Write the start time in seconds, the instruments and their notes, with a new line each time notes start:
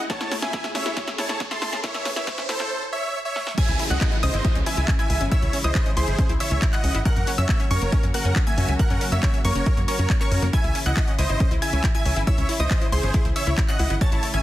Already playing: string section E4, riser
0.10 string section C#3 A3 G#4, synth arpeggio sound C#4, supersaw synth C#5 A5, kick, snare, closed hi-hat
0.21 synth arpeggio sound E4, snare, closed hi-hat
0.32 synth arpeggio sound E4, snare, open hi-hat
0.42 synth arpeggio sound C#4, supersaw synth E5 G#5, snare, closed hi-hat
0.53 synth arpeggio sound E4, kick, snare, closed hi-hat
0.64 synth arpeggio sound E4, snare, closed hi-hat
0.75 synth arpeggio sound C#4, supersaw synth C#5 E5, snare, open hi-hat
0.86 synth arpeggio sound E4, snare, closed hi-hat
0.97 synth arpeggio sound E4, kick, snare, closed hi-hat
1.08 synth arpeggio sound C#4, snare, closed hi-hat
1.18 synth arpeggio sound E4, supersaw synth C#5 A5, snare, open hi-hat
1.29 synth arpeggio sound E4, snare, closed hi-hat
1.40 synth arpeggio sound C#4, kick, snare, closed hi-hat
1.51 synth arpeggio sound E4, supersaw synth A5 C6, snare, closed hi-hat
1.62 synth arpeggio sound E4, snare, open hi-hat
1.73 synth arpeggio sound C#4, snare, closed hi-hat
1.84 synth arpeggio sound E4, supersaw synth C#5 E5, kick, snare, closed hi-hat
1.95 synth arpeggio sound E4, snare, closed hi-hat
2.05 synth arpeggio sound C#4, snare, open hi-hat
2.16 synth arpeggio sound E4, supersaw synth C#5 E5, snare, closed hi-hat
2.27 synth arpeggio sound E4, kick, snare, closed hi-hat
2.38 synth arpeggio sound C#4, snare, closed hi-hat
2.49 synth arpeggio sound E4, supersaw synth A4 C5, snare, open hi-hat
2.60 synth arpeggio sound E4, snare, closed hi-hat
2.92 supersaw synth C#5 E5
3.25 supersaw synth C#5 E5
3.36 snare
3.47 snare
3.58 string section C#3 E3 G#3 E4, synth arpeggio sound C#4, supersaw synth E5 G#5, synth pluck G#6, kick, closed hi-hat, crash, downlifter
3.69 analog synth bass C#2, synth arpeggio sound E4, closed hi-hat
3.79 synth arpeggio sound E4, open hi-hat
3.90 analog synth bass C#2, synth arpeggio sound C#4, supersaw synth D#5 F#5, synth pluck F#6, closed hi-hat
4.01 synth arpeggio sound E4, kick, clap, closed hi-hat
4.12 synth arpeggio sound E4, closed hi-hat
4.23 analog synth bass C#2, synth arpeggio sound C#4, supersaw synth C5 D#5, synth pluck D#6, open hi-hat
4.34 analog synth bass G#1, synth arpeggio sound E4, closed hi-hat
4.45 synth arpeggio sound E4, kick, closed hi-hat
4.55 analog synth bass C#2, synth arpeggio sound C#4, closed hi-hat
4.66 synth arpeggio sound E4, supersaw synth E5 G#5, synth pluck G#6, open hi-hat
4.77 analog synth bass C#2, synth arpeggio sound E4, closed hi-hat
4.88 synth arpeggio sound C#4, kick, clap, closed hi-hat
4.99 synth arpeggio sound E4, supersaw synth E5 G#5, synth pluck G#6, closed hi-hat
5.10 analog synth bass C#2, synth arpeggio sound E4, open hi-hat
5.21 analog synth bass G#1, synth arpeggio sound C#4, closed hi-hat
5.32 synth arpeggio sound E4, supersaw synth C#5 E5, synth pluck E6, kick, closed hi-hat
5.42 analog synth bass C#2, synth arpeggio sound E4, closed hi-hat
5.53 synth arpeggio sound C#4, open hi-hat
5.64 analog synth bass C#2, synth arpeggio sound E4, supersaw synth C5 D#5, synth pluck D#6, closed hi-hat
5.75 synth arpeggio sound E4, kick, clap, closed hi-hat
5.86 synth arpeggio sound C#4, closed hi-hat
5.97 analog synth bass C#2, synth arpeggio sound E4, supersaw synth G#4 C5, synth pluck C6, open hi-hat
6.08 analog synth bass G#1, synth arpeggio sound E4, closed hi-hat
6.19 synth arpeggio sound C#4, kick, closed hi-hat
6.29 analog synth bass C#2, synth arpeggio sound E4, closed hi-hat
6.40 synth arpeggio sound E4, supersaw synth C#5 E5, synth pluck E6, open hi-hat
6.51 analog synth bass C#2, synth arpeggio sound C#4, closed hi-hat
6.62 synth arpeggio sound E4, kick, clap, closed hi-hat
6.73 synth arpeggio sound E4, supersaw synth D#5 F#5, synth pluck F#6, clap, closed hi-hat
6.84 analog synth bass C#2, synth arpeggio sound C#4, open hi-hat
6.95 analog synth bass G#1, synth arpeggio sound E4, closed hi-hat
7.05 string section F#3 A#3 F#4, synth arpeggio sound C#4, supersaw synth A#4 F#5, synth pluck F#6, kick, closed hi-hat
7.16 analog synth bass F#2, synth arpeggio sound A#3, closed hi-hat
7.27 synth arpeggio sound C#4, open hi-hat
7.38 analog synth bass F#2, synth arpeggio sound C#4, supersaw synth C#5 E5, synth pluck E6, closed hi-hat
7.49 synth arpeggio sound A#3, kick, clap, closed hi-hat
7.60 synth arpeggio sound C#4, closed hi-hat
7.71 analog synth bass F#2, synth arpeggio sound C#4, supersaw synth A#4 C#5, synth pluck C#6, open hi-hat
7.82 analog synth bass F#1, synth arpeggio sound A#3, closed hi-hat
7.92 synth arpeggio sound C#4, kick, closed hi-hat
8.03 analog synth bass F#2, synth arpeggio sound C#4, closed hi-hat
8.14 synth arpeggio sound A#3, supersaw synth A#4 F#5, synth pluck F#6, open hi-hat
8.25 analog synth bass F#2, synth arpeggio sound C#4, closed hi-hat
8.36 synth arpeggio sound C#4, kick, clap, closed hi-hat
8.47 synth arpeggio sound A#3, supersaw synth E5 G#5, synth pluck G#6, closed hi-hat
8.58 analog synth bass F#2, synth arpeggio sound C#4, open hi-hat
8.68 analog synth bass C#2, synth arpeggio sound C#4, closed hi-hat
8.79 synth arpeggio sound A#3, supersaw synth A#4 F#5, synth pluck F#6, kick, closed hi-hat
8.90 analog synth bass F#2, synth arpeggio sound C#4, closed hi-hat
9.01 synth arpeggio sound C#4, open hi-hat
9.12 analog synth bass F#2, synth arpeggio sound A#3, supersaw synth C#5 E5, synth pluck E6, closed hi-hat
9.23 synth arpeggio sound C#4, kick, clap, closed hi-hat
9.34 synth arpeggio sound C#4, closed hi-hat
9.45 analog synth bass F#2, synth arpeggio sound A#3, supersaw synth A#4 C#5, synth pluck C#6, open hi-hat
9.55 analog synth bass F#1, synth arpeggio sound C#4, closed hi-hat
9.66 synth arpeggio sound C#4, kick, closed hi-hat
9.77 analog synth bass F#2, synth arpeggio sound A#3, closed hi-hat
9.88 synth arpeggio sound C#4, supersaw synth A#4 C#5, synth pluck C#6, open hi-hat
9.99 analog synth bass F#2, synth arpeggio sound C#4, closed hi-hat
10.10 synth arpeggio sound A#3, kick, clap, closed hi-hat
10.21 synth arpeggio sound C#4, supersaw synth A#4 C#5, synth pluck C#6, clap, closed hi-hat
10.32 analog synth bass F#2, synth arpeggio sound C#4, open hi-hat
10.42 analog synth bass F#2, synth arpeggio sound A#3, closed hi-hat
10.53 string section E3 E4, synth arpeggio sound E4, supersaw synth E5 G#5, synth pluck G#6, kick, closed hi-hat
10.64 analog synth bass C#2, synth arpeggio sound E4, closed hi-hat
10.75 synth arpeggio sound C#4, open hi-hat
10.86 analog synth bass C#2, synth arpeggio sound E4, supersaw synth D#5 F#5, synth pluck F#6, closed hi-hat
10.97 synth arpeggio sound E4, kick, clap, closed hi-hat
11.08 synth arpeggio sound C#4, closed hi-hat
11.19 analog synth bass C#2, synth arpeggio sound E4, supersaw synth C5 D#5, synth pluck D#6, open hi-hat
11.29 analog synth bass G#1, synth arpeggio sound E4, closed hi-hat
11.40 synth arpeggio sound C#4, kick, closed hi-hat
11.51 analog synth bass C#2, synth arpeggio sound E4, closed hi-hat
11.62 synth arpeggio sound E4, supersaw synth E5 G#5, synth pluck G#6, open hi-hat
11.73 analog synth bass C#2, synth arpeggio sound C#4, closed hi-hat
11.84 synth arpeggio sound E4, kick, clap, closed hi-hat
11.95 synth arpeggio sound E4, supersaw synth E5 G#5, synth pluck G#6, closed hi-hat
12.05 analog synth bass C#2, synth arpeggio sound C#4, open hi-hat
12.16 analog synth bass G#1, synth arpeggio sound E4, closed hi-hat
12.27 synth arpeggio sound E4, supersaw synth C#5 E5, synth pluck E6, kick, closed hi-hat
12.38 analog synth bass C#2, synth arpeggio sound C#4, closed hi-hat
12.49 synth arpeggio sound E4, open hi-hat
12.60 analog synth bass C#2, synth arpeggio sound E4, supersaw synth C5 D#5, synth pluck D#6, closed hi-hat
12.71 synth arpeggio sound C#4, kick, clap, closed hi-hat
12.81 synth arpeggio sound E4, closed hi-hat
12.92 analog synth bass C#2, synth arpeggio sound E4, supersaw synth G#4 C5, synth pluck C6, open hi-hat
13.03 analog synth bass G#1, synth arpeggio sound C#4, closed hi-hat
13.14 synth arpeggio sound E4, kick, closed hi-hat
13.25 analog synth bass C#2, synth arpeggio sound E4, closed hi-hat
13.36 synth arpeggio sound C#4, supersaw synth C#5 E5, synth pluck E6, open hi-hat
13.47 analog synth bass C#2, synth arpeggio sound E4, closed hi-hat
13.58 synth arpeggio sound E4, kick, clap, closed hi-hat
13.68 synth arpeggio sound C#4, supersaw synth D#5 F#5, synth pluck F#6, clap, closed hi-hat
13.79 analog synth bass C#2, synth arpeggio sound E4, open hi-hat
13.90 analog synth bass G#1, synth arpeggio sound E4, closed hi-hat
14.01 string section C#3 A3 E4, synth arpeggio sound C#4, supersaw synth C#5 A5, synth pluck A6, kick, closed hi-hat
14.12 analog synth bass A1, synth arpeggio sound E4, closed hi-hat
14.23 synth arpeggio sound E4, open hi-hat
14.34 analog synth bass A1, synth arpeggio sound C#4, supersaw synth E5 G#5, synth pluck G#6, closed hi-hat